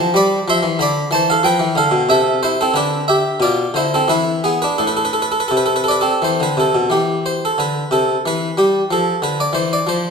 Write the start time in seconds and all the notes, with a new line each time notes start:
Already playing: C5 A5
0.00 F3
0.14 G3 D5 B5
0.48 F3 E5 C6
0.63 E3
0.79 D3 D5 B5
1.11 E3 C5 A5
1.30 A4 F5
1.43 F3 B4 G5
1.59 E3
1.75 D3 A4 F5
1.91 B2
2.09 C3 A4 E5
2.43 E4 C5
2.61 C4 A4
2.74 D3 D4 B4
3.08 G4 E5
3.40 B2 F4 D5
3.74 D3 E4 C5
3.94 C4 A4
4.08 E3 E4 B4
4.44 B3 G#4
4.62 D4 B4
4.78 A2 A4
4.87 B4
4.97 A4
5.05 B4
5.13 A4
5.22 B4
5.32 A4
5.40 B4
5.48 C3 A4
5.57 B4
5.66 A4
5.76 B4
5.84 A4
5.88 B4 D5
6.01 C4 A4
6.22 E3 C5
6.40 D3 B4
6.57 C3 A4
6.75 B2
6.90 E3 G4
7.26 C5
7.45 A4
7.58 D3 B4
7.91 C3 A4
8.26 E3 B4
8.58 G3 G4
8.91 F3 A4
9.22 D3 B4
9.40 D5
9.53 E3 C5
9.73 D5
9.87 F3 C5